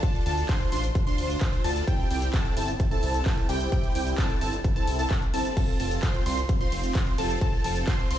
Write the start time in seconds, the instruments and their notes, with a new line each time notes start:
0.03 supersaw synth D4 F4, digital synth lead A5, kick, closed hi-hat, shaker
0.15 shaker
0.26 detuned saw bass D2, supersaw synth D4 F4 A4, digital synth lead A5, open hi-hat
0.38 closed hi-hat, shaker
0.49 supersaw synth D4 F4 C5, digital synth lead C6, kick, clap, closed hi-hat, shaker
0.61 closed hi-hat, shaker
0.72 detuned saw bass A1, supersaw synth D4 F4 C5, digital synth lead C6, open hi-hat
0.84 closed hi-hat, shaker
0.95 kick, closed hi-hat, shaker
1.07 supersaw synth D4 F4 C5, digital synth lead C6, closed hi-hat, shaker
1.18 detuned saw bass D2, open hi-hat
1.30 closed hi-hat, shaker
1.41 kick, clap, closed hi-hat, shaker
1.53 closed hi-hat, shaker
1.64 detuned saw bass D2, supersaw synth D4 F4 A4, digital synth lead A5, open hi-hat
1.76 closed hi-hat, shaker
1.87 supersaw synth C4 E4 G4, digital synth lead G5, kick, closed hi-hat, shaker
2.00 shaker
2.11 detuned saw bass C2, supersaw synth C4 E4 G4, digital synth lead G5, open hi-hat
2.22 closed hi-hat, shaker
2.34 supersaw synth C4 E4 A4, digital synth lead A5, kick, clap, closed hi-hat, shaker
2.45 closed hi-hat, shaker
2.57 detuned saw bass G1, supersaw synth C4 E4 A4, digital synth lead A5, open hi-hat
2.68 closed hi-hat, shaker
2.80 kick, closed hi-hat, shaker
2.91 supersaw synth C4 E4 A4, digital synth lead A5, closed hi-hat, shaker
3.03 detuned saw bass C2, open hi-hat
3.14 closed hi-hat, shaker
3.26 kick, clap, open hi-hat, shaker
3.37 closed hi-hat, shaker
3.49 detuned saw bass C2, supersaw synth C4 E4 G4, digital synth lead G5, open hi-hat
3.61 closed hi-hat, shaker
3.72 supersaw synth C4 E4 G4, digital synth lead G5, kick, closed hi-hat, shaker
3.84 closed hi-hat, shaker
3.95 detuned saw bass C2, supersaw synth C4 E4 G4, digital synth lead G5, open hi-hat
4.07 closed hi-hat, shaker
4.18 supersaw synth C4 E4 A4, digital synth lead A5, kick, clap, closed hi-hat, shaker
4.30 closed hi-hat, shaker
4.41 detuned saw bass G1, supersaw synth C4 E4 A4, digital synth lead A5, open hi-hat
4.53 closed hi-hat, shaker
4.64 kick, closed hi-hat, shaker
4.76 supersaw synth C4 E4 A4, digital synth lead A5, closed hi-hat, shaker
4.88 detuned saw bass C2, open hi-hat
4.99 supersaw synth C4 E4 A4, digital synth lead A5, open hi-hat, shaker
5.11 kick, clap, closed hi-hat, shaker
5.22 closed hi-hat, shaker
5.34 detuned saw bass G1, supersaw synth C4 E4 A4, digital synth lead A5, open hi-hat
5.45 closed hi-hat, shaker
5.57 supersaw synth C4 F4 A4, digital synth lead A5, kick, closed hi-hat, ride, crash, shaker
5.69 shaker
5.80 detuned saw bass F1, supersaw synth C4 F4 A4, digital synth lead A5, open hi-hat, ride
5.91 closed hi-hat, shaker
6.03 supersaw synth F4 C5, digital synth lead C6, kick, clap, closed hi-hat, ride, shaker
6.14 closed hi-hat, shaker
6.26 detuned saw bass C2, supersaw synth C4 F4 C5, digital synth lead C6, open hi-hat, ride
6.38 closed hi-hat, shaker
6.49 kick, closed hi-hat, ride, shaker
6.61 supersaw synth C4 F4 C5, digital synth lead C6, closed hi-hat, shaker
6.72 detuned saw bass F1, open hi-hat, ride
6.84 closed hi-hat, shaker
6.95 kick, clap, open hi-hat, ride, shaker
7.07 closed hi-hat, shaker
7.18 detuned saw bass F1, supersaw synth C4 F4 A4, digital synth lead A5, open hi-hat, ride
7.30 closed hi-hat, shaker
7.41 supersaw synth C4, digital synth lead A5, kick, closed hi-hat, ride, shaker
7.53 shaker
7.64 detuned saw bass F1, supersaw synth C4 F4 A4, digital synth lead A5, open hi-hat, ride
7.76 closed hi-hat, shaker
7.88 supersaw synth C4 F4 C5, digital synth lead C6, kick, clap, closed hi-hat, ride, shaker
7.99 closed hi-hat, shaker
8.11 detuned saw bass C2, supersaw synth C4 F4 C5, digital synth lead C6, open hi-hat, ride